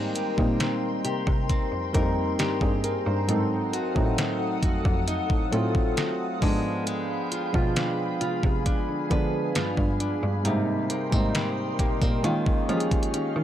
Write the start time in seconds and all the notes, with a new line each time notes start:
Already playing: D#3 G3 G#3 A#3 C4 D#4 A#4 G5 A#5 C6
0.15 G4, closed hi-hat
0.36 A#2 G3 A#3 C4 D#4, kick
0.60 C4, snare, closed hi-hat
1.05 C3 G4, closed hi-hat
1.27 C3, kick
1.49 C4 A#5, kick, closed hi-hat
1.72 F2
1.93 F2 G3 A#3 C4 D#4 A#4, kick, closed hi-hat
2.39 G2 A#3 G4, snare, closed hi-hat
2.61 G2 C4 G#4, kick
2.84 C4 A#4, closed hi-hat
3.06 G2 D#4 C5
3.27 G#2 F#3 C4 D#4 A4 F5 F#5 D#6, closed hi-hat
3.73 F#4, closed hi-hat
3.95 A2 F#3 A3 C4 D#4, kick
4.18 D#4, snare, closed hi-hat
4.63 F2 F#4, kick, closed hi-hat
4.85 F2, kick
5.08 D#4, closed hi-hat
5.30 A2, kick
5.51 A2 F#3 A3 C4 F4 A4, closed hi-hat
5.75 kick
5.97 F#4, snare, closed hi-hat
6.40 G#2 F3 G#3 B3 D4 G#4 G5 B5, kick, open hi-hat
6.87 G#3, closed hi-hat
7.31 F4, closed hi-hat
7.53 B2 F3 G#3 B3 F4, kick
7.76 D4, snare, closed hi-hat
8.21 C3 F4 G#5, closed hi-hat
8.43 C3, kick
8.66 D4, kick, closed hi-hat
8.89 D3
9.09 D3 F3 G#3 B3 D4 B4, kick, closed hi-hat
9.55 G2 F4, snare, closed hi-hat
9.77 G2, kick
10.00 D4, closed hi-hat
10.23 G2
10.44 G#2 C3 G3 A#3 C4 D#4 A#4 D#5 G5 C6, closed hi-hat
10.90 A#3, closed hi-hat
11.11 G#2 G3 A#3 C4 D#4, kick
11.35 G3 D#4, snare, closed hi-hat
11.79 A#2 A#3 G4, kick, closed hi-hat
12.02 A#2 C4 A#4, kick
12.23 D#3 G#3 A#3 C#4 F4 G#4 F5 C#6, closed hi-hat
12.46 kick
12.68 F3 G#3 A#3 C#4 F4 G4, closed hi-hat
12.77 G#4, closed hi-hat
12.91 kick, closed hi-hat
13.03 closed hi-hat
13.14 D#3 C#4, closed hi-hat
13.36 D#3